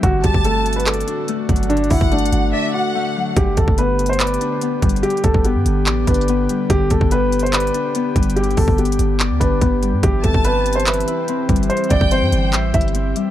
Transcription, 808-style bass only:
\new Staff \with { instrumentName = "808-style bass" } { \clef bass \time 4/4 \key g \major \tempo 4 = 144 g,,8 g,,16 g,,4.~ g,,16 r4 g,,8~ | g,,8 g,,16 g,,8. g,,8 r2 | g,,8 g,,16 g,,4.~ g,,16 r4 g,,8 | r8 g,,16 g,,8 g,16 g,,8 a,,8 g,,4 r8 |
g,,8 g,,16 g,,4.~ g,,16 r4 g,,8~ | g,,8 g,,16 g,,8. g,,8. d,16 g,,8 g,,8. g,16 | g,,8 g,,16 g,,4.~ g,,16 r4 g,,8 | r8 g,,16 g,,8 g,16 g,,8 a,,8 g,,4 r8 | }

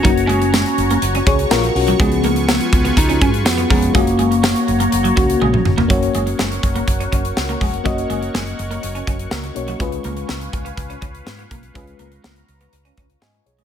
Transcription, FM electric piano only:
\new Staff \with { instrumentName = "FM electric piano" } { \time 4/4 \key fis \major \tempo 4 = 123 << { r2 r8 <gis' cis''>8 <eis' ais'>8 <cis' fis'>8~ | <cis' fis'>8 r2. r8 | r1 | r1 |
r1 | r1 | r2. <dis'' gis''>8 <gis' cis''>8 | } \\ { <ais cis' fis'>1 | <eis gis b cis' gis'>2.~ <eis gis b cis' gis'>8 <eis gis b cis' gis'>8 | <ais cis' fis'>2~ <ais cis' fis'>8 <ais cis' fis'>4. | <ais cis' fis' cis''>1 |
<ais cis' fis' dis''>2.~ <ais cis' fis' dis''>8 <ais cis' fis' cis''>8 | <gis cis' eis' b'>1 | <gis cis' eis' b'>1 | } >> }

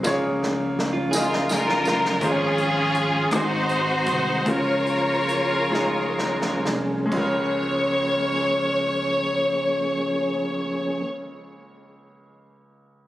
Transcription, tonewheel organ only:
<<
  \new Staff \with { instrumentName = "Tonewheel organ" } { \time 6/8 \key des \major \tempo 4. = 46 <f des'>2. | <f des' aes'>4. <ees c' ges'>4. | <f des' aes'>2. | <f bes des' aes'>2.~ |
<f bes des' aes'>2. | }
  \new Staff \with { instrumentName = "Tonewheel organ" } { \time 6/8 \key des \major bes2. | aes2. | bes2. | r2. |
r2. | }
>>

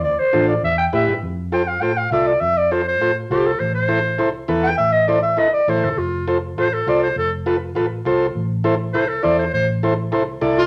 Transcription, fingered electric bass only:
\new Staff \with { instrumentName = "Fingered electric bass" } { \clef bass \time 4/4 \key f \lydian \tempo 4 = 202 d,8 r8 a,,4 e,4 a,8 g,8 | f,2 a,4 c,4 | f,2 a,4 c,4 | a,,2 c,4 e,4 |
a,,2 c,4 a,,8 g,,8 | f,,2 a,,4 c,4 | f,,2 a,,4 c,4 | a,,2 c,4 e,4 |
a,,2 c,4 c,4 | }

